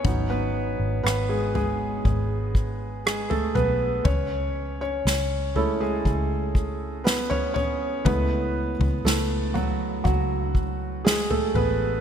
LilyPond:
<<
  \new Staff \with { instrumentName = "Felt piano" } { \time 4/4 \key cis \minor \tempo 4 = 60 <cis' cis''>16 <b b'>8. <b b'>16 <gis gis'>16 <gis gis'>4. <gis gis'>16 <a a'>16 <b b'>8 | <cis' cis''>8. <cis' cis''>8. <a a'>16 <gis gis'>4~ <gis gis'>16 <b b'>16 <cis' cis''>16 <cis' cis''>8 | <b b'>4 <a a'>8 <fis fis'>8 <fis fis'>4 <gis gis'>16 <a a'>16 <b b'>8 | }
  \new Staff \with { instrumentName = "Felt piano" } { \time 4/4 \key cis \minor <fis b dis'>4. r2 r8 | r4. <gis cis' e'>4. r4 | <gis a e'>8 r2. r8 | }
  \new Staff \with { instrumentName = "Fingered electric bass" } { \clef bass \time 4/4 \key cis \minor gis,,8. gis,,16 gis,,4 gis,,4. b,,8 | cis,4 cis,4 cis,2 | cis,8. cis,16 cis,4 cis,4. a,,8 | }
  \new DrumStaff \with { instrumentName = "Drums" } \drummode { \time 4/4 <bd tomfh>4 ss8 tomfh8 <bd tomfh>8 bd8 ss16 tomfh16 tomfh8 | <bd tomfh>4 sn8 tomfh8 <bd tomfh>8 bd8 sn16 tomfh16 tomfh8 | <bd tomfh>8. tomfh16 sn8 tomfh8 <bd tomfh>8 bd8 sn16 tomfh16 tomfh8 | }
>>